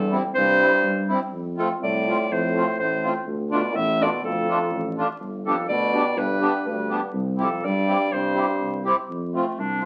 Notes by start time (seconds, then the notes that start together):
Already playing: E2 G2 A4
0.11 G3 C4 E4
0.34 C2 G2 C5
0.61 G3 C4 E4
0.83 G2
1.09 G3 C4 E4
1.32 F2
1.57 F2 A3 C4 F4 A4
1.80 C2 A2 D5
2.08 A3 C4 F4
2.28 F2 A2 C5
2.56 A3 C4 F4
2.79 A1 A2 C5
3.03 A3 C4 F4
3.26 D2
3.51 B2 A3 D4 F4 D5
3.73 A1 A2 E5
4.00 B2 A3 D4 F4 D5
4.22 D2 F2 A4
4.48 A3 D4 F4
4.70 A1
4.98 A3 D4 F4
5.19 G1
5.45 F2 B3 D4 G4 A4
5.68 D2 B2 D5
5.93 B3 D4 G4
6.16 G1 G2 B4
6.42 B3 D4 G4
6.66 D2 G2 B4
6.89 B3 D4 G4
7.13 C2
7.38 F2 C4 E4 G4
7.42 A4
7.64 G2 D5
7.87 C4 E4 G4
8.11 C2 G2 C5
8.35 C4 E4 G4
8.60 C2
8.85 C4 E4 G4
9.08 F2
9.33 A3 C4 F4
9.58 C2 D4
9.82 A3 C4 F4